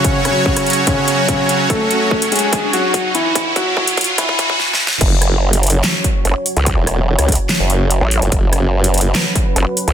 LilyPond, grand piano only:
\new Staff \with { instrumentName = "Grand piano" } { \time 4/4 \key fis \minor \tempo 4 = 145 <cis cis'>8 <cis cis'>4. <cis cis'>4 <cis cis'>4 | <a a'>4. <gis gis'>4 <fis fis'>4 <e e'>8~ | <e e'>8 <fis fis'>4. <e e'>4 r4 | r1 |
r1 | r1 | }